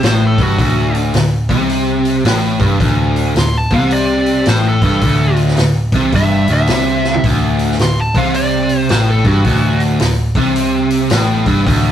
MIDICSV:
0, 0, Header, 1, 5, 480
1, 0, Start_track
1, 0, Tempo, 554017
1, 517, Time_signature, 4, 2, 24, 8
1, 10327, End_track
2, 0, Start_track
2, 0, Title_t, "Lead electric guitar"
2, 0, Program_c, 0, 29
2, 58, Note_on_c, 0, 72, 79
2, 203, Note_off_c, 0, 72, 0
2, 233, Note_on_c, 0, 69, 76
2, 369, Note_off_c, 0, 69, 0
2, 369, Note_on_c, 0, 66, 93
2, 829, Note_off_c, 0, 66, 0
2, 2935, Note_on_c, 0, 84, 93
2, 3097, Note_off_c, 0, 84, 0
2, 3097, Note_on_c, 0, 81, 76
2, 3239, Note_on_c, 0, 77, 83
2, 3244, Note_off_c, 0, 81, 0
2, 3395, Note_off_c, 0, 77, 0
2, 3399, Note_on_c, 0, 74, 94
2, 3866, Note_off_c, 0, 74, 0
2, 3888, Note_on_c, 0, 72, 80
2, 4040, Note_off_c, 0, 72, 0
2, 4060, Note_on_c, 0, 69, 82
2, 4200, Note_off_c, 0, 69, 0
2, 4211, Note_on_c, 0, 69, 93
2, 4672, Note_off_c, 0, 69, 0
2, 5334, Note_on_c, 0, 76, 107
2, 5639, Note_off_c, 0, 76, 0
2, 5660, Note_on_c, 0, 76, 95
2, 6272, Note_off_c, 0, 76, 0
2, 6776, Note_on_c, 0, 84, 91
2, 6924, Note_off_c, 0, 84, 0
2, 6926, Note_on_c, 0, 81, 68
2, 7079, Note_off_c, 0, 81, 0
2, 7082, Note_on_c, 0, 77, 70
2, 7237, Note_off_c, 0, 77, 0
2, 7240, Note_on_c, 0, 74, 94
2, 7706, Note_off_c, 0, 74, 0
2, 7722, Note_on_c, 0, 72, 75
2, 7884, Note_off_c, 0, 72, 0
2, 7884, Note_on_c, 0, 69, 83
2, 8033, Note_off_c, 0, 69, 0
2, 8033, Note_on_c, 0, 66, 83
2, 8501, Note_off_c, 0, 66, 0
2, 10327, End_track
3, 0, Start_track
3, 0, Title_t, "Overdriven electric guitar"
3, 0, Program_c, 1, 29
3, 29, Note_on_c, 1, 45, 92
3, 329, Note_off_c, 1, 45, 0
3, 343, Note_on_c, 1, 43, 99
3, 508, Note_off_c, 1, 43, 0
3, 511, Note_on_c, 1, 38, 99
3, 990, Note_off_c, 1, 38, 0
3, 1000, Note_on_c, 1, 38, 65
3, 1243, Note_off_c, 1, 38, 0
3, 1301, Note_on_c, 1, 48, 105
3, 1951, Note_off_c, 1, 48, 0
3, 1954, Note_on_c, 1, 45, 102
3, 2250, Note_off_c, 1, 45, 0
3, 2253, Note_on_c, 1, 43, 104
3, 2424, Note_off_c, 1, 43, 0
3, 2427, Note_on_c, 1, 38, 98
3, 2898, Note_off_c, 1, 38, 0
3, 2909, Note_on_c, 1, 38, 67
3, 3159, Note_off_c, 1, 38, 0
3, 3226, Note_on_c, 1, 48, 103
3, 3877, Note_off_c, 1, 48, 0
3, 3886, Note_on_c, 1, 45, 93
3, 4180, Note_off_c, 1, 45, 0
3, 4185, Note_on_c, 1, 43, 95
3, 4356, Note_off_c, 1, 43, 0
3, 4364, Note_on_c, 1, 38, 91
3, 4838, Note_off_c, 1, 38, 0
3, 4853, Note_on_c, 1, 38, 67
3, 5092, Note_off_c, 1, 38, 0
3, 5157, Note_on_c, 1, 48, 99
3, 5322, Note_off_c, 1, 48, 0
3, 5325, Note_on_c, 1, 43, 100
3, 5620, Note_off_c, 1, 43, 0
3, 5628, Note_on_c, 1, 38, 91
3, 5797, Note_off_c, 1, 38, 0
3, 5802, Note_on_c, 1, 48, 92
3, 6277, Note_off_c, 1, 48, 0
3, 6285, Note_on_c, 1, 38, 88
3, 6748, Note_off_c, 1, 38, 0
3, 6758, Note_on_c, 1, 38, 65
3, 7004, Note_off_c, 1, 38, 0
3, 7077, Note_on_c, 1, 48, 101
3, 7715, Note_off_c, 1, 48, 0
3, 7718, Note_on_c, 1, 45, 97
3, 8015, Note_off_c, 1, 45, 0
3, 8021, Note_on_c, 1, 43, 99
3, 8193, Note_off_c, 1, 43, 0
3, 8199, Note_on_c, 1, 38, 95
3, 8660, Note_off_c, 1, 38, 0
3, 8671, Note_on_c, 1, 38, 65
3, 8919, Note_off_c, 1, 38, 0
3, 8985, Note_on_c, 1, 48, 105
3, 9632, Note_off_c, 1, 48, 0
3, 9637, Note_on_c, 1, 45, 102
3, 9932, Note_off_c, 1, 45, 0
3, 9940, Note_on_c, 1, 43, 106
3, 10109, Note_off_c, 1, 43, 0
3, 10112, Note_on_c, 1, 38, 106
3, 10327, Note_off_c, 1, 38, 0
3, 10327, End_track
4, 0, Start_track
4, 0, Title_t, "Picked electric bass"
4, 0, Program_c, 2, 34
4, 31, Note_on_c, 2, 33, 94
4, 318, Note_off_c, 2, 33, 0
4, 330, Note_on_c, 2, 31, 97
4, 499, Note_off_c, 2, 31, 0
4, 505, Note_on_c, 2, 26, 85
4, 957, Note_off_c, 2, 26, 0
4, 986, Note_on_c, 2, 26, 76
4, 1276, Note_off_c, 2, 26, 0
4, 1291, Note_on_c, 2, 36, 90
4, 1918, Note_off_c, 2, 36, 0
4, 1946, Note_on_c, 2, 33, 92
4, 2236, Note_off_c, 2, 33, 0
4, 2248, Note_on_c, 2, 31, 91
4, 2418, Note_off_c, 2, 31, 0
4, 2428, Note_on_c, 2, 26, 91
4, 2881, Note_off_c, 2, 26, 0
4, 2912, Note_on_c, 2, 26, 80
4, 3200, Note_off_c, 2, 26, 0
4, 3210, Note_on_c, 2, 36, 83
4, 3839, Note_off_c, 2, 36, 0
4, 3873, Note_on_c, 2, 33, 96
4, 4161, Note_off_c, 2, 33, 0
4, 4174, Note_on_c, 2, 31, 90
4, 4343, Note_off_c, 2, 31, 0
4, 4346, Note_on_c, 2, 26, 85
4, 4800, Note_off_c, 2, 26, 0
4, 4841, Note_on_c, 2, 26, 73
4, 5122, Note_off_c, 2, 26, 0
4, 5127, Note_on_c, 2, 36, 83
4, 5299, Note_off_c, 2, 36, 0
4, 5304, Note_on_c, 2, 31, 87
4, 5596, Note_off_c, 2, 31, 0
4, 5616, Note_on_c, 2, 26, 81
4, 5784, Note_off_c, 2, 26, 0
4, 5792, Note_on_c, 2, 36, 93
4, 6243, Note_off_c, 2, 36, 0
4, 6271, Note_on_c, 2, 26, 80
4, 6722, Note_off_c, 2, 26, 0
4, 6751, Note_on_c, 2, 26, 71
4, 7040, Note_off_c, 2, 26, 0
4, 7053, Note_on_c, 2, 36, 89
4, 7679, Note_off_c, 2, 36, 0
4, 7722, Note_on_c, 2, 33, 91
4, 8005, Note_off_c, 2, 33, 0
4, 8010, Note_on_c, 2, 31, 91
4, 8176, Note_off_c, 2, 31, 0
4, 8181, Note_on_c, 2, 26, 86
4, 8636, Note_off_c, 2, 26, 0
4, 8676, Note_on_c, 2, 26, 77
4, 8961, Note_off_c, 2, 26, 0
4, 8968, Note_on_c, 2, 36, 88
4, 9594, Note_off_c, 2, 36, 0
4, 9624, Note_on_c, 2, 33, 91
4, 9913, Note_off_c, 2, 33, 0
4, 9933, Note_on_c, 2, 31, 93
4, 10099, Note_off_c, 2, 31, 0
4, 10110, Note_on_c, 2, 26, 89
4, 10327, Note_off_c, 2, 26, 0
4, 10327, End_track
5, 0, Start_track
5, 0, Title_t, "Drums"
5, 26, Note_on_c, 9, 46, 73
5, 37, Note_on_c, 9, 38, 113
5, 113, Note_off_c, 9, 46, 0
5, 123, Note_off_c, 9, 38, 0
5, 331, Note_on_c, 9, 36, 93
5, 331, Note_on_c, 9, 46, 50
5, 418, Note_off_c, 9, 36, 0
5, 418, Note_off_c, 9, 46, 0
5, 507, Note_on_c, 9, 36, 101
5, 511, Note_on_c, 9, 46, 72
5, 593, Note_off_c, 9, 36, 0
5, 598, Note_off_c, 9, 46, 0
5, 819, Note_on_c, 9, 46, 51
5, 905, Note_off_c, 9, 46, 0
5, 985, Note_on_c, 9, 46, 69
5, 995, Note_on_c, 9, 38, 100
5, 1071, Note_off_c, 9, 46, 0
5, 1082, Note_off_c, 9, 38, 0
5, 1292, Note_on_c, 9, 36, 96
5, 1301, Note_on_c, 9, 46, 52
5, 1379, Note_off_c, 9, 36, 0
5, 1387, Note_off_c, 9, 46, 0
5, 1468, Note_on_c, 9, 46, 68
5, 1555, Note_off_c, 9, 46, 0
5, 1776, Note_on_c, 9, 46, 53
5, 1862, Note_off_c, 9, 46, 0
5, 1949, Note_on_c, 9, 46, 77
5, 1960, Note_on_c, 9, 38, 107
5, 2036, Note_off_c, 9, 46, 0
5, 2046, Note_off_c, 9, 38, 0
5, 2250, Note_on_c, 9, 36, 92
5, 2250, Note_on_c, 9, 46, 51
5, 2337, Note_off_c, 9, 36, 0
5, 2337, Note_off_c, 9, 46, 0
5, 2427, Note_on_c, 9, 36, 103
5, 2429, Note_on_c, 9, 46, 74
5, 2514, Note_off_c, 9, 36, 0
5, 2516, Note_off_c, 9, 46, 0
5, 2738, Note_on_c, 9, 46, 53
5, 2825, Note_off_c, 9, 46, 0
5, 2908, Note_on_c, 9, 46, 70
5, 2918, Note_on_c, 9, 38, 102
5, 2994, Note_off_c, 9, 46, 0
5, 3005, Note_off_c, 9, 38, 0
5, 3210, Note_on_c, 9, 46, 52
5, 3212, Note_on_c, 9, 36, 96
5, 3296, Note_off_c, 9, 46, 0
5, 3299, Note_off_c, 9, 36, 0
5, 3385, Note_on_c, 9, 46, 69
5, 3471, Note_off_c, 9, 46, 0
5, 3692, Note_on_c, 9, 46, 49
5, 3778, Note_off_c, 9, 46, 0
5, 3860, Note_on_c, 9, 46, 71
5, 3871, Note_on_c, 9, 38, 107
5, 3947, Note_off_c, 9, 46, 0
5, 3957, Note_off_c, 9, 38, 0
5, 4172, Note_on_c, 9, 46, 47
5, 4174, Note_on_c, 9, 36, 91
5, 4259, Note_off_c, 9, 46, 0
5, 4260, Note_off_c, 9, 36, 0
5, 4344, Note_on_c, 9, 46, 75
5, 4348, Note_on_c, 9, 36, 98
5, 4430, Note_off_c, 9, 46, 0
5, 4434, Note_off_c, 9, 36, 0
5, 4647, Note_on_c, 9, 46, 52
5, 4734, Note_off_c, 9, 46, 0
5, 4748, Note_on_c, 9, 38, 28
5, 4824, Note_on_c, 9, 46, 73
5, 4835, Note_off_c, 9, 38, 0
5, 4835, Note_on_c, 9, 38, 97
5, 4911, Note_off_c, 9, 46, 0
5, 4921, Note_off_c, 9, 38, 0
5, 5132, Note_on_c, 9, 36, 100
5, 5132, Note_on_c, 9, 46, 53
5, 5219, Note_off_c, 9, 36, 0
5, 5219, Note_off_c, 9, 46, 0
5, 5307, Note_on_c, 9, 36, 98
5, 5307, Note_on_c, 9, 46, 73
5, 5394, Note_off_c, 9, 36, 0
5, 5394, Note_off_c, 9, 46, 0
5, 5610, Note_on_c, 9, 46, 52
5, 5696, Note_off_c, 9, 46, 0
5, 5782, Note_on_c, 9, 46, 78
5, 5792, Note_on_c, 9, 38, 110
5, 5869, Note_off_c, 9, 46, 0
5, 5879, Note_off_c, 9, 38, 0
5, 6101, Note_on_c, 9, 38, 50
5, 6188, Note_off_c, 9, 38, 0
5, 6188, Note_on_c, 9, 43, 86
5, 6271, Note_on_c, 9, 36, 107
5, 6272, Note_on_c, 9, 46, 75
5, 6275, Note_off_c, 9, 43, 0
5, 6358, Note_off_c, 9, 36, 0
5, 6358, Note_off_c, 9, 46, 0
5, 6576, Note_on_c, 9, 46, 50
5, 6663, Note_off_c, 9, 46, 0
5, 6681, Note_on_c, 9, 38, 27
5, 6751, Note_on_c, 9, 46, 67
5, 6762, Note_off_c, 9, 38, 0
5, 6762, Note_on_c, 9, 38, 106
5, 6838, Note_off_c, 9, 46, 0
5, 6848, Note_off_c, 9, 38, 0
5, 7058, Note_on_c, 9, 36, 98
5, 7060, Note_on_c, 9, 46, 50
5, 7144, Note_off_c, 9, 36, 0
5, 7147, Note_off_c, 9, 46, 0
5, 7229, Note_on_c, 9, 46, 69
5, 7315, Note_off_c, 9, 46, 0
5, 7530, Note_on_c, 9, 46, 51
5, 7616, Note_off_c, 9, 46, 0
5, 7702, Note_on_c, 9, 46, 74
5, 7713, Note_on_c, 9, 38, 112
5, 7789, Note_off_c, 9, 46, 0
5, 7799, Note_off_c, 9, 38, 0
5, 8011, Note_on_c, 9, 36, 99
5, 8011, Note_on_c, 9, 46, 47
5, 8098, Note_off_c, 9, 36, 0
5, 8098, Note_off_c, 9, 46, 0
5, 8183, Note_on_c, 9, 46, 73
5, 8185, Note_on_c, 9, 36, 102
5, 8269, Note_off_c, 9, 46, 0
5, 8272, Note_off_c, 9, 36, 0
5, 8491, Note_on_c, 9, 46, 51
5, 8577, Note_off_c, 9, 46, 0
5, 8660, Note_on_c, 9, 46, 72
5, 8670, Note_on_c, 9, 38, 102
5, 8746, Note_off_c, 9, 46, 0
5, 8757, Note_off_c, 9, 38, 0
5, 8968, Note_on_c, 9, 36, 95
5, 8970, Note_on_c, 9, 46, 49
5, 9055, Note_off_c, 9, 36, 0
5, 9057, Note_off_c, 9, 46, 0
5, 9146, Note_on_c, 9, 46, 79
5, 9233, Note_off_c, 9, 46, 0
5, 9447, Note_on_c, 9, 46, 57
5, 9534, Note_off_c, 9, 46, 0
5, 9615, Note_on_c, 9, 46, 85
5, 9625, Note_on_c, 9, 38, 112
5, 9701, Note_off_c, 9, 46, 0
5, 9712, Note_off_c, 9, 38, 0
5, 9928, Note_on_c, 9, 46, 52
5, 9930, Note_on_c, 9, 36, 91
5, 10015, Note_off_c, 9, 46, 0
5, 10017, Note_off_c, 9, 36, 0
5, 10107, Note_on_c, 9, 36, 105
5, 10113, Note_on_c, 9, 46, 80
5, 10194, Note_off_c, 9, 36, 0
5, 10199, Note_off_c, 9, 46, 0
5, 10327, End_track
0, 0, End_of_file